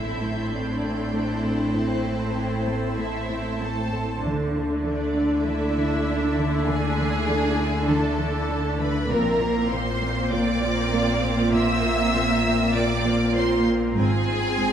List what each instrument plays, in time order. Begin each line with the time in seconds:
Already playing: sub bass A1, cello section A2, viola section A3 C4, violin section E4 E5 B5 C6 G6, ambient pad E4 C5 A5, impact
0.21 cello section A3
0.52 cello section A2, violin section D4 D5
0.84 cello section A2
1.14 cello section A3
1.44 cello section A2
1.74 cello section A2, violin section C4 C5
1.81 violin section F#6
2.05 cello section A2
2.37 cello section A2
2.67 cello section A3
2.97 cello section A2, violin section E4 E5
3.30 cello section A2
3.60 cello section A3, violin section A4 A5
3.92 cello section A2
4.23 sub bass D2, double bass section D2, cello section D3, viola section A3 D4, ambient pad E4 D5 E5
4.54 cello section D3
4.84 cello section D3, violin section D4 D5
5.16 cello section D4
5.45 cello section D3, violin section E4 E5
5.77 cello section D3
6.08 cello section D4
6.38 cello section D3
6.67 cello section D3, violin section G#4 G#5
6.98 cello section D3
7.28 cello section D3
7.58 cello section D4
7.88 cello section D3, violin section A4 A5
8.19 cello section D3
8.49 cello section D4
8.79 cello section D3, violin section B4 B5
9.09 double bass section A#1, sub bass A#1, cello section A#2, viola section A#3 C4, ambient pad F4 C5 A#5, violin section A#4 A#5
9.40 cello section A#2
9.70 cello section A#2, violin section C5 C6
10.00 cello section A#3
10.31 cello section A#2, violin section D5 D6
10.62 cello section A#2
10.93 cello section A#3
11.22 cello section A#2
11.53 cello section A#2, violin section E5 E6
11.84 cello section A#2
12.13 cello section A#2
12.43 cello section A#3
12.74 cello section A#2, violin section D5 D6
13.03 cello section A#2
13.35 cello section A#3, violin section C5 C6
13.65 cello section A#2
13.96 double bass section G#1, sub bass G#1, cello section G#2, ambient pad C4 C5 G#5, viola section C4, violin section G#4 G#5
14.27 cello section G#2
14.57 cello section G#2